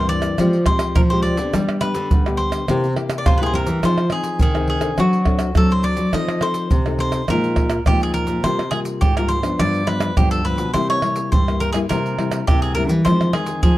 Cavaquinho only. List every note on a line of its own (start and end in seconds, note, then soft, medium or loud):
0.09 0.66 D5 loud
0.66 0.96 C5 medium
0.95 1.00 A#4 medium
1.10 1.22 C5 medium
1.23 1.77 D5 medium
1.81 2.41 B4 medium
2.37 3.13 C5 medium
3.18 3.27 D5 medium
3.26 3.39 F4 medium
3.26 3.37 C5 medium
3.38 3.46 B4 medium
3.43 3.55 G#4 medium
3.43 3.55 C5 medium
3.55 3.85 A#4 medium
3.85 4.14 C5 medium
4.12 4.39 G#4 medium
4.42 4.68 G#4 medium
4.70 4.99 G#4 medium
5.00 5.53 F#4 medium
5.57 5.72 A4 medium
5.72 5.85 C5 medium
5.84 6.14 D5 medium
6.14 6.44 D#5 loud
6.42 6.99 C5 medium
7.00 7.27 C5 medium
7.30 7.83 A#4 medium
7.87 8.02 G4 medium
8.03 8.13 G#4 medium
8.14 8.44 A#4 medium
8.44 8.71 C5 medium
8.71 8.79 G#4 medium
9.01 9.16 G4 medium
9.17 9.30 A#4 medium
9.28 9.59 C5 medium
9.60 9.86 D5 loud
9.87 10.15 B4 medium
10.17 10.31 G4 medium
10.31 10.45 A4 medium
10.45 10.73 B4 medium
10.73 10.89 C5 medium
10.90 11.31 C#5 loud
11.32 11.62 C5 medium
11.60 11.72 A#4 medium
11.72 11.77 G#4 medium
11.89 12.47 A#4 medium
12.47 12.61 G4 medium
12.62 12.74 G#4 medium
12.75 12.83 A#4 medium
13.05 13.35 C5 medium
13.33 13.62 G#4 medium
13.63 13.78 G#4 medium